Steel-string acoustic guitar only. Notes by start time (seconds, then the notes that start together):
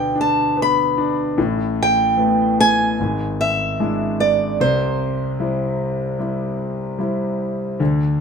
Already playing: G5
0.21 A5
0.62 B5
1.83 G5
2.60 G#5
3.41 E5
4.20 D5
4.61 C5